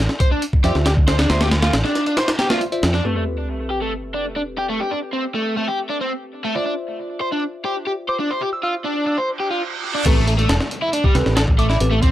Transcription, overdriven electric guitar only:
0.20 0.27 C5 medium
0.31 0.42 D4 loud
0.64 0.75 G4 loud
0.86 0.90 G4 medium
1.08 1.15 C5 medium
1.19 1.29 D4 loud
1.30 1.40 C5 medium
1.41 1.48 G4 loud
1.63 1.73 F4 medium
1.85 2.05 D4 medium
2.07 2.17 D4 medium
2.17 2.28 C5 medium
2.39 2.46 G4 medium
2.50 2.61 F4 medium
2.94 3.04 D4 loud
3.05 3.15 A3 medium
3.16 3.23 A3 medium
3.71 3.78 G4 medium
3.82 3.92 A3 medium
4.14 4.25 D4 medium
4.36 4.40 D4 medium
4.58 4.65 G4 medium
4.69 4.79 A3 medium
4.80 4.91 G4 medium
4.91 4.98 D4 medium
5.13 5.23 C4 medium
5.35 5.56 A3 medium
5.57 5.67 A3 medium
5.68 5.78 G4 medium
5.89 5.96 D4 medium
6.01 6.11 C4 medium
6.44 6.55 A3 medium
6.55 6.65 D4 medium
6.66 6.73 D4 medium
7.21 7.28 C5 medium
7.32 7.42 D4 medium
7.65 7.75 G4 medium
7.87 7.91 G4 medium
8.09 8.16 C5 medium
8.19 8.30 D4 medium
8.30 8.41 C5 medium
8.41 8.48 G4 medium
8.63 8.74 F4 medium
8.85 9.06 D4 medium
9.07 9.17 D4 medium
9.18 9.29 C5 medium
9.40 9.47 G4 medium
9.51 9.61 F4 medium
9.95 10.05 D4 medium
10.06 10.26 A3 medium
10.27 10.32 A3 medium
10.38 10.49 A3 medium
10.49 10.53 A4 medium
10.82 10.89 E4 medium
10.93 11.03 D4 medium
11.04 11.14 G3 medium
11.37 11.41 A4 medium
11.59 11.66 A3 medium
11.70 11.77 E4 loud
11.92 11.99 A3 medium
12.03 12.10 C4 medium

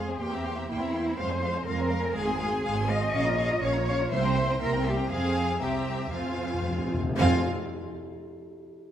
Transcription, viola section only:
0.09 0.21 C4 soft
0.21 0.32 A#3 soft
0.34 0.46 C4 soft
0.46 0.58 A#3 soft
0.56 0.69 C4 soft
0.68 0.80 A#3 soft
0.81 0.94 C4 soft
0.94 1.06 A#3 soft
1.06 1.18 C4 soft
1.18 1.29 G#3 soft
1.30 1.42 C4 soft
1.43 1.55 G#3 soft
1.55 1.67 C4 soft
1.68 1.79 G#3 medium
1.80 1.91 C4 soft
1.91 2.03 G#3 soft
2.03 2.15 C4 soft
2.15 2.26 G#3 medium
2.27 2.39 C4 soft
2.39 2.52 G#3 soft
2.52 2.64 C4 medium
2.64 2.76 G#3 medium
2.78 2.90 C4 medium
2.90 3.02 G#3 soft
3.02 3.15 C4 medium
3.14 3.25 C#4 medium
3.27 3.39 F4 soft
3.39 3.51 C#4 medium
3.51 3.63 F4 medium
3.64 3.75 C#4 medium
3.76 3.88 F4 medium
3.89 4.00 C#4 medium
4.01 4.13 F4 soft
4.13 4.24 A#3 medium
4.26 4.38 C4 soft
4.37 4.49 A#3 soft
4.50 4.62 C4 soft
4.63 4.73 A#3 medium
4.75 4.87 C4 soft
4.87 4.99 A#3 soft
4.99 5.10 C4 soft
5.12 5.58 C4 medium
5.62 6.12 C4 medium
6.13 6.96 C4 soft
7.19 7.47 C4 medium

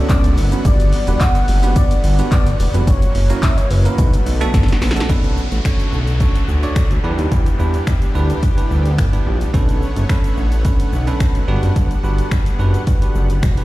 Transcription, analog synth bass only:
0.09 0.39 C#2 medium
0.37 0.55 F#1 medium
0.65 0.92 G1 loud
1.08 1.16 E1 medium
1.48 1.76 F#1 medium
2.04 2.22 G1 medium
2.46 2.55 G1 medium
2.59 2.69 E1 loud
2.74 2.83 F1 loud
2.87 3.05 F#1 loud
3.15 3.33 F#1 loud
3.70 3.88 F#1 medium
3.98 4.16 B1 loud
4.26 4.44 B1 medium
4.54 4.72 F#1 loud
4.82 5.00 A#1 loud
5.09 5.37 B1 loud
5.52 5.60 A1 medium
5.93 6.20 B1 medium
6.48 6.66 D2 medium
6.91 6.99 D2 medium
7.04 7.13 E2 loud
7.19 7.27 D#2 medium
7.32 7.50 E2 loud
7.59 7.77 E2 loud
8.15 8.33 D2 medium
8.71 9.00 D2 medium
8.98 9.16 G1 loud
9.26 9.44 A#1 loud
9.54 9.82 B1 loud
9.96 10.05 F#1 medium
10.37 10.65 A1 medium
10.93 11.11 B1 medium
11.35 11.44 B1 medium
11.48 11.58 G1 loud
11.63 11.71 F#1 medium
11.76 11.94 G1 loud
12.04 12.22 G1 medium
12.59 12.77 F#1 medium
13.15 13.44 F#1 medium
13.43 13.64 E1 loud

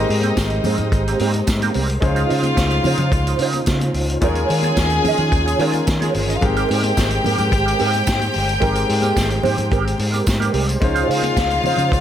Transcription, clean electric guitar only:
0.09 muted clean electric guitar stroke medium
0.23 0.39 A#3 medium
0.23 0.38 C4 medium
0.23 0.38 G4 medium
0.51 muted clean electric guitar stroke medium
0.65 0.84 A#3 medium
0.65 0.78 C4 medium
0.65 0.78 G#4 loud
0.78 muted clean electric guitar stroke soft
0.94 muted clean electric guitar stroke soft
1.08 1.19 A#3 medium
1.08 1.20 C4 medium
1.08 1.21 G4 medium
1.21 1.39 A#3 medium
1.21 1.33 C4 loud
1.21 1.32 G4 loud
1.33 muted clean electric guitar stroke soft
1.47 muted clean electric guitar stroke soft
1.63 1.73 A#3 medium
1.63 1.74 C4 medium
1.63 1.75 G4 medium
1.74 1.89 A#3 medium
1.74 1.89 C4 medium
1.74 1.87 G4 medium
1.88 muted clean electric guitar stroke soft
2.02 muted clean electric guitar stroke soft
2.15 2.28 D#4 medium
2.15 2.30 F4 medium
2.15 2.31 C5 medium
2.29 2.44 D#4 medium
2.29 2.45 F4 medium
2.29 2.43 C5 medium
2.57 muted clean electric guitar stroke soft
2.71 muted clean electric guitar stroke soft
2.84 2.99 D#4 loud
2.84 2.98 F4 medium
2.84 2.97 C5 medium
2.98 3.12 D#4 medium
2.98 3.12 F4 medium
2.98 3.13 C5 medium
3.13 muted clean electric guitar stroke soft
3.27 3.40 D#4 medium
3.27 3.41 F4 medium
3.27 3.41 C5 medium
3.41 3.59 D#4 loud
3.41 3.54 F4 medium
3.41 3.52 C5 loud
3.54 muted clean electric guitar stroke medium
3.67 muted clean electric guitar stroke soft
3.82 muted clean electric guitar stroke soft
4.09 muted clean electric guitar stroke soft
4.22 4.48 F4 medium
4.22 4.48 G#4 medium
4.22 4.48 C#5 medium
4.50 muted clean electric guitar stroke soft
4.64 4.79 F4 medium
4.64 4.79 G#4 medium
4.64 4.78 C#5 medium
4.92 muted clean electric guitar stroke soft
5.06 5.24 F4 medium
5.06 5.20 G#4 medium
5.06 5.19 D#5 medium
5.19 muted clean electric guitar stroke soft
5.33 muted clean electric guitar stroke soft
5.46 5.58 F4 medium
5.46 5.59 G#4 medium
5.46 5.60 C#5 medium
5.59 5.78 F4 medium
5.59 5.73 G#4 medium
5.59 5.72 C#5 loud
5.73 muted clean electric guitar stroke medium
5.87 muted clean electric guitar stroke soft
6.00 6.13 F4 medium
6.00 6.14 G#4 medium
6.00 6.15 C#5 medium
6.15 muted clean electric guitar stroke soft
6.28 muted clean electric guitar stroke soft
6.42 muted clean electric guitar stroke soft
6.57 6.70 C4 medium
6.57 6.71 G4 medium
6.57 6.71 A#4 medium
6.71 6.85 C4 medium
6.71 6.85 G4 medium
6.71 6.83 A#4 medium
6.85 muted clean electric guitar stroke medium
6.98 muted clean electric guitar stroke soft
7.12 muted clean electric guitar stroke soft
7.25 7.39 C4 medium
7.25 7.39 G4 medium
7.25 7.37 A#4 medium
7.38 7.51 C4 medium
7.38 7.52 G4 soft
7.38 7.52 A#4 medium
7.52 muted clean electric guitar stroke soft
7.66 7.78 C4 medium
7.66 7.78 G4 medium
7.66 7.80 A#4 medium
7.79 7.98 C4 loud
7.79 7.92 G4 loud
7.79 7.91 A#4 medium
7.92 muted clean electric guitar stroke soft
8.07 muted clean electric guitar stroke soft
8.19 muted clean electric guitar stroke medium
8.47 muted clean electric guitar stroke soft
8.60 8.86 C4 medium
8.60 8.87 G4 medium
8.60 8.87 A#4 medium
8.88 muted clean electric guitar stroke soft
9.02 9.18 C4 medium
9.02 9.18 G4 medium
9.02 9.17 A#4 medium
9.30 muted clean electric guitar stroke soft
9.42 9.62 C4 medium
9.42 9.58 G4 medium
9.42 9.56 C5 loud
9.57 muted clean electric guitar stroke medium
9.71 9.90 C4 loud
9.71 9.86 G4 medium
9.71 9.85 A#4 loud
9.87 muted clean electric guitar stroke soft
10.00 muted clean electric guitar stroke soft
10.12 10.26 C4 medium
10.12 10.26 G4 medium
10.12 10.27 A#4 medium
10.27 muted clean electric guitar stroke soft
10.40 10.52 C4 medium
10.40 10.53 G4 medium
10.40 10.54 A#4 medium
10.53 10.68 C4 medium
10.53 10.68 G4 medium
10.53 10.67 A#4 medium
10.68 muted clean electric guitar stroke medium
10.81 muted clean electric guitar stroke soft
10.94 11.07 D#4 medium
10.94 11.08 F4 medium
10.94 11.09 C5 loud
11.09 11.23 D#4 medium
11.09 11.24 F4 medium
11.09 11.23 C5 medium
11.37 muted clean electric guitar stroke soft
11.52 muted clean electric guitar stroke soft
11.65 11.78 D#4 medium
11.65 11.77 F4 loud
11.65 11.77 C5 medium
11.78 11.91 D#4 soft
11.78 11.92 F4 medium
11.78 11.92 C5 medium
11.93 muted clean electric guitar stroke soft

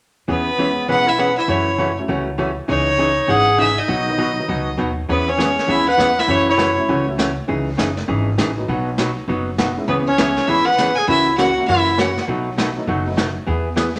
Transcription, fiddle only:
0.30 0.86 B4 medium
0.90 1.10 F#5 loud
1.09 1.21 E5 loud
1.20 1.37 F#5 loud
1.38 1.52 E5 medium
1.50 1.99 C#5 medium
2.69 3.31 C#5 loud
3.30 3.60 F#5 loud
3.60 3.80 E5 loud
3.78 4.79 D#5 medium
5.10 5.31 B4 medium
5.29 5.72 C#5 medium
5.70 5.87 E5 medium
5.88 6.21 F#5 loud
6.20 6.32 E5 medium
6.31 6.49 C#5 loud
6.50 7.05 C#5 medium
9.88 9.96 B4 medium
10.07 10.49 C#5 medium
10.47 10.67 E5 medium
10.65 10.97 F#5 loud
10.95 11.07 G#5 medium
11.09 11.36 E5 loud
11.38 11.66 F#5 medium
11.68 12.01 E5 medium
12.00 12.23 F#5 medium

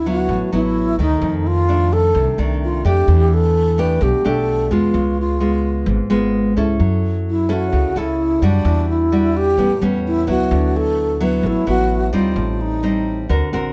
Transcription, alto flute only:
0.10 0.51 F#4 medium
0.54 0.97 E4 medium
1.01 1.49 D#4 medium
1.47 1.94 F4 loud
1.93 2.39 A4 loud
2.64 2.85 F4 medium
2.87 3.35 G4 medium
3.34 3.81 A4 loud
3.80 4.04 B4 medium
4.02 4.27 G4 medium
4.26 4.74 A4 medium
4.73 5.18 F4 medium
5.21 5.85 F4 medium
7.30 7.54 E4 medium
7.53 8.00 F#4 medium
7.98 8.46 E4 medium
8.44 8.89 D4 medium
8.90 9.38 E4 medium
9.37 9.82 G4 loud
10.07 10.27 E4 medium
10.30 10.78 F#4 medium
10.77 11.25 A4 loud
11.23 11.48 B4 medium
11.47 11.68 E4 medium
11.69 12.11 F#4 loud
12.15 12.63 F4 medium
12.61 13.30 D#4 medium

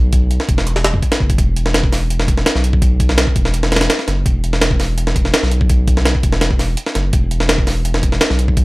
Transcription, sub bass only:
0.00 0.38 B1 loud
0.49 1.01 E1 medium
1.21 1.37 F#1 loud
1.38 1.91 E1 loud
1.92 2.45 E1 loud
2.55 3.26 B1 loud
3.36 3.88 E1 loud
4.08 4.24 F#1 loud
4.26 4.78 E1 loud
4.80 5.32 E1 loud
5.43 6.13 B1 loud
6.23 6.76 E1 loud
6.95 7.12 F#1 loud
7.13 7.66 E1 loud
7.67 8.20 E1 loud
8.30 8.64 B1 loud

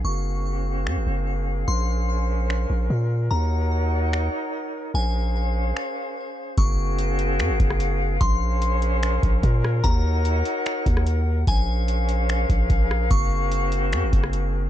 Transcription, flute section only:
0.05 1.66 C4 medium
0.05 1.66 F#4 medium
0.05 3.28 G#4 medium
0.05 6.28 A#4 medium
0.05 3.28 F5 medium
1.68 3.03 C#4 medium
1.68 3.01 C5 medium
3.31 4.93 D#4 medium
3.31 4.67 F#4 medium
3.31 4.93 C#5 medium
3.31 4.70 F#5 medium
4.94 6.56 C#4 medium
4.94 6.56 G#4 medium
4.94 6.56 C5 medium
4.94 6.56 F5 medium
6.58 8.19 C4 medium
6.58 8.19 F#4 medium
6.58 8.19 G#4 medium
6.58 8.19 A#4 medium
6.58 9.81 F5 medium
8.21 9.83 C#4 medium
8.21 9.83 G#4 medium
8.21 11.44 A#4 medium
8.21 9.83 C5 medium
9.84 11.23 D#4 medium
9.84 11.46 F#4 medium
9.84 11.16 C#5 medium
9.84 11.46 F#5 medium
11.47 13.09 C#4 medium
11.47 14.70 G#4 medium
11.47 14.70 A#4 medium
11.47 13.09 C5 medium
11.47 14.51 F5 medium
13.11 14.70 C4 medium
13.11 14.70 F#4 medium

